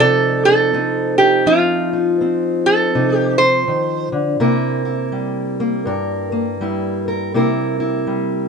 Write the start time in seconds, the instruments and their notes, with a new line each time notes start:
Already playing: steel-string acoustic guitar F3 C4 A4
0.00 steel-string acoustic guitar C3 D#4, resonator guitar played with a steel bar A4
0.45 steel-string acoustic guitar D#4, resonator guitar played with a steel bar A4
0.73 steel-string acoustic guitar C4 D#4
1.18 steel-string acoustic guitar D#4, resonator guitar played with a steel bar G4
1.46 steel-string acoustic guitar F3 D#4, resonator guitar played with a steel bar F4
1.93 steel-string acoustic guitar D#4
2.21 steel-string acoustic guitar C4
2.66 steel-string acoustic guitar D#4, resonator guitar played with a steel bar A4
2.95 steel-string acoustic guitar C3 D#4
3.17 resonator guitar played with a steel bar G4
3.38 resonator guitar played with a steel bar C5
3.68 steel-string acoustic guitar D#3
4.12 steel-string acoustic guitar D3
4.40 steel-string acoustic guitar C3 A#3 E4 A#4
4.85 steel-string acoustic guitar E4
5.12 steel-string acoustic guitar G3
5.60 steel-string acoustic guitar A#3
5.85 steel-string acoustic guitar G2 A#4
6.32 steel-string acoustic guitar A#3
6.61 steel-string acoustic guitar G3 E4
7.08 steel-string acoustic guitar A#4
7.34 steel-string acoustic guitar C3 A#3 E4 A#4
7.80 steel-string acoustic guitar E4
8.07 steel-string acoustic guitar G3